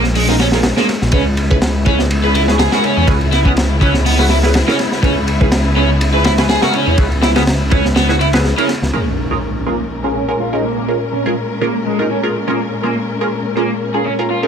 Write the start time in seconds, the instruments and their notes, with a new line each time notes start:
Already playing: detuned saw bass A#1, string section G#3 A#3 C#4
0.04 snare
0.15 overdriven electric guitar G#3, open hi-hat
0.29 synth stab C#4 F4 G#4 A#4, overdriven electric guitar D#4, snare
0.40 overdriven electric guitar C#4, snare, ride
0.52 synth stab C#4 F4 G#4 A#4, snare
0.63 snare, ride
0.77 overdriven electric guitar A#3, synth stab C#4 F4 G#4 A#4, snare
0.89 snare, ride
1.02 detuned saw bass A#1, snare
1.12 detuned saw bass C#2, string section C#3 B3 E4, synth stab C#4 E4 G#4 B4, overdriven electric guitar C#4, kick, ride
1.37 ride
1.50 synth stab C#4 E4 G#4 B4, kick
1.62 snare, ride
1.86 synth stab C#4 E4 G#4 B4, overdriven electric guitar C#4, kick, ride
1.99 snare
2.11 ride
2.23 synth stab C#4 E4 G#4 B4, overdriven electric guitar B4
2.35 overdriven electric guitar E4, ride
2.48 synth stab C#4 E4 G#4 B4, snare
2.59 overdriven electric guitar G#4, snare, ride
2.72 synth stab C#4 E4 G#4 A#4, overdriven electric guitar F#4, snare
2.84 overdriven electric guitar C#4, ride
2.97 detuned saw bass E2, overdriven electric guitar C#4
3.07 detuned saw bass C#2, synth stab C#4 E4 G#4 B4, kick, ride
3.21 ride
3.32 overdriven electric guitar E4, snare, ride
3.45 overdriven electric guitar B3, synth stab C#4 E4 G#4 B4, kick
3.57 snare, ride
3.81 overdriven electric guitar C#4, synth stab C#4 E4 G#4 B4, kick, ride
3.94 snare
4.06 overdriven electric guitar B3, open hi-hat
4.19 synth stab C#4 E4 G#4 B4, overdriven electric guitar F#4, snare
4.29 overdriven electric guitar E4, snare, ride
4.43 synth stab C#4 E4 G#4 B4, snare
4.54 snare, ride
4.68 synth stab C#4 E4 G#4 A#4, overdriven electric guitar C#4, snare
4.79 snare, ride
4.92 snare
5.03 detuned saw bass C#2, synth stab C#4 E4 G#4 B4, overdriven electric guitar C#4, kick, ride
5.28 ride
5.41 synth stab C#4 E4 G#4 B4, kick
5.52 snare, ride
5.76 synth stab C#4 E4 G#4 B4, overdriven electric guitar C#4
6.01 ride
6.14 synth stab C#4 E4 G#4 B4, overdriven electric guitar B4
6.24 overdriven electric guitar E4, snare, ride
6.38 synth stab C#4 E4 G#4 B4, snare, ride
6.49 overdriven electric guitar G#4, snare, ride
6.62 synth stab C#4 E4 G#4 A#4, overdriven electric guitar F#4, snare, ride
6.73 overdriven electric guitar C#4, ride
6.87 detuned saw bass E2, overdriven electric guitar C#4
6.98 detuned saw bass C#2, synth stab C#4 E4 G#4 B4, kick, ride
7.12 ride
7.22 overdriven electric guitar E4, snare, ride
7.36 overdriven electric guitar B3, synth stab C#4 E4 G#4 B4, snare, ride
7.47 snare, ride
7.71 synth stab C#4 E4 G#4 B4, overdriven electric guitar C#4, kick, ride
7.85 snare
7.96 overdriven electric guitar B3, snare, ride
8.09 synth stab C#4 E4 G#4 B4, overdriven electric guitar F#4, snare
8.20 overdriven electric guitar E4, ride
8.33 synth stab C#4 E4 G#4 B4, snare, ride
8.44 snare
8.58 overdriven electric guitar C#4, synth stab C#4 E4 G#4 A#4, ride
8.69 snare, ride
8.82 detuned saw bass C#2, snare
8.93 string section A#2 G#3 C#4 A#4, overdriven electric guitar A#3, synth stab C#4 F4 G#4 A#4, impact
9.31 synth stab C#4 F4 G#4 A#4
9.66 overdriven electric guitar A#3, synth stab C#4 F4 G#4 A#4
10.04 synth stab C#4 F4 G#4 A#4, overdriven electric guitar G#4
10.15 overdriven electric guitar C#4
10.28 synth stab C#4 F4 G#4 A#4
10.40 overdriven electric guitar F4
10.53 synth stab C#4 F4 G#4 A#4, overdriven electric guitar D#4
10.64 overdriven electric guitar A#3
10.78 overdriven electric guitar A#3
10.88 synth stab C#4 F4 G#4 A#4
11.13 overdriven electric guitar C#4
11.26 overdriven electric guitar G#3, synth stab C#4 F4 G#4 A#4
11.61 overdriven electric guitar A#3, synth stab C#4 F4 G#4 A#4
11.86 overdriven electric guitar G#3
11.99 synth stab C#4 F4 G#4 A#4, overdriven electric guitar D#4
12.11 overdriven electric guitar C#4
12.23 synth stab C#4 F4 G#4 A#4
12.48 overdriven electric guitar A#3, synth stab C#4 F4 G#4 A#4
12.83 overdriven electric guitar A#3, synth stab C#4 F4 G#4 A#4
13.21 synth stab C#4 F4 G#4 A#4
13.57 overdriven electric guitar A#3, synth stab C#4 F4 G#4 A#4
13.94 synth stab C#4 F4 G#4 A#4, overdriven electric guitar G#4
14.05 overdriven electric guitar C#4
14.19 synth stab C#4 F4 G#4 A#4
14.30 overdriven electric guitar F4
14.43 synth stab C#4 F4 G#4 A#4, overdriven electric guitar D#4